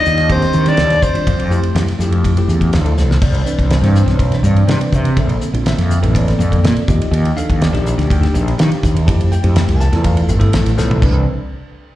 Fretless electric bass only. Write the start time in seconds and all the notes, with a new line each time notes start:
0.06 D#2
0.54 D#3
0.78 D#2
1.27 F2
1.39 F2
1.75 F2
1.87 muted fretless electric bass stroke
1.99 F2
2.48 E2
2.73 D2
2.97 C2
3.22 C2
3.59 C2
3.81 G2
4.06 B1
4.43 G2
4.67 C3
4.92 C3
5.17 A#1
5.53 A#1
5.78 F2
6.03 A1
6.39 F2
6.64 A#2
6.89 D#2
7.11 D#2
7.50 D#2
7.74 A#1
7.98 D2
8.34 A#1
8.60 D#3
8.84 D#2
9.08 F2
9.44 F2
9.68 C2
9.92 E2
10.29 G1
10.54 A1
10.79 B1
11.02 C2